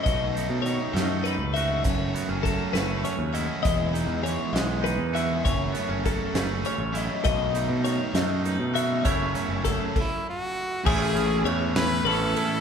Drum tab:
CC |------|------|------|------|
RD |------|------|------|------|
HH |xxxxxx|xxxxxx|xxxxxx|xxxxxx|
SD |---o--|---o--|---o--|---o--|
BD |o-----|o-o---|o-----|o-o---|

CC |------|---x--|x-----|
RD |------|------|-xxxxx|
HH |xxxxxx|xxx---|------|
SD |---o--|------|---o--|
BD |o-----|o-oo--|o-----|